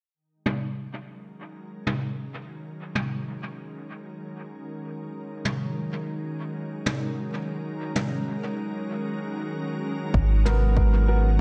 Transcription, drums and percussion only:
0.46 mid tom
1.87 mid tom
2.95 mid tom
5.45 mid tom
6.86 mid tom
7.96 mid tom
10.14 kick
10.46 mid tom
10.77 kick

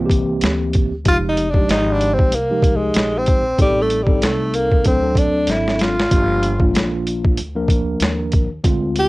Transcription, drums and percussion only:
0.10 kick, closed hi-hat
0.41 snare, closed hi-hat
0.73 kick, closed hi-hat
1.05 kick, closed hi-hat
1.37 closed hi-hat
1.54 kick
1.69 snare, closed hi-hat
2.01 closed hi-hat
2.19 kick
2.32 closed hi-hat
2.62 kick, closed hi-hat
2.94 snare, closed hi-hat
3.26 kick, closed hi-hat
3.58 kick, closed hi-hat
3.90 closed hi-hat
4.07 kick
4.22 snare, closed hi-hat
4.54 closed hi-hat
4.72 kick
4.84 kick, closed hi-hat
5.15 kick, closed hi-hat
5.47 snare, closed hi-hat
5.68 snare
5.79 snare, closed hi-hat
6.00 snare
6.11 kick, closed hi-hat
6.43 closed hi-hat
6.60 kick
6.75 snare, closed hi-hat
7.07 closed hi-hat
7.25 kick
7.37 closed hi-hat
7.68 kick, closed hi-hat
8.00 snare, closed hi-hat
8.32 kick, closed hi-hat
8.64 kick, closed hi-hat
8.96 closed hi-hat

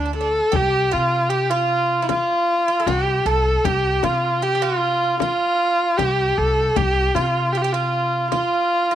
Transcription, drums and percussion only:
0.53 frame drum
2.09 frame drum
2.87 frame drum
3.65 frame drum
4.03 frame drum
5.20 frame drum
5.99 frame drum
6.76 frame drum
7.15 frame drum
8.32 frame drum

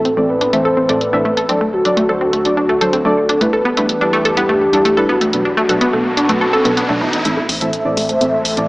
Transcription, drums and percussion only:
0.05 closed hi-hat
0.41 closed hi-hat
0.53 closed hi-hat
0.89 closed hi-hat
1.01 closed hi-hat
1.37 closed hi-hat
1.49 closed hi-hat
1.85 closed hi-hat
1.97 closed hi-hat
2.33 closed hi-hat
2.45 closed hi-hat
2.81 closed hi-hat
2.93 closed hi-hat
3.29 closed hi-hat
3.41 closed hi-hat
3.77 closed hi-hat
3.89 closed hi-hat
4.25 closed hi-hat
4.37 closed hi-hat
4.73 closed hi-hat
4.85 closed hi-hat
5.21 closed hi-hat
5.33 closed hi-hat
5.69 closed hi-hat
5.81 closed hi-hat
6.17 closed hi-hat
6.29 closed hi-hat
6.65 closed hi-hat
6.77 closed hi-hat
7.13 closed hi-hat
7.25 closed hi-hat
7.49 open hi-hat
7.61 closed hi-hat
7.73 closed hi-hat
7.97 open hi-hat
8.09 closed hi-hat
8.21 closed hi-hat
8.45 open hi-hat
8.57 closed hi-hat

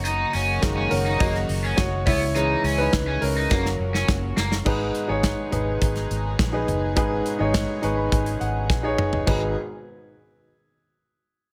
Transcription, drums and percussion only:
0.05 hi-hat pedal, open hi-hat
0.33 hi-hat pedal, open hi-hat
0.62 kick, snare, hi-hat pedal, open hi-hat
0.91 hi-hat pedal, open hi-hat
1.20 kick, hi-hat pedal, open hi-hat
1.35 snare
1.49 hi-hat pedal, open hi-hat
1.77 kick, snare, hi-hat pedal, open hi-hat
2.07 kick, floor tom, hi-hat pedal, open hi-hat
2.36 hi-hat pedal, open hi-hat
2.64 hi-hat pedal, open hi-hat
2.93 kick, snare, hi-hat pedal, open hi-hat
3.22 hi-hat pedal, open hi-hat
3.51 kick, snare
3.66 snare
3.94 snare
4.08 kick, snare
4.37 snare
4.52 snare
4.66 kick, crash
4.95 closed hi-hat
5.23 kick, snare, closed hi-hat
5.52 closed hi-hat, floor tom
5.82 kick, closed hi-hat
5.96 snare, closed hi-hat
6.11 closed hi-hat
6.39 kick, snare, closed hi-hat
6.68 closed hi-hat, floor tom
6.96 kick, closed hi-hat
7.26 closed hi-hat
7.54 kick, snare, closed hi-hat
7.83 closed hi-hat
8.12 kick, closed hi-hat
8.26 closed hi-hat
8.41 closed hi-hat
8.70 kick, snare
8.98 mid tom
9.13 floor tom
9.27 kick, crash

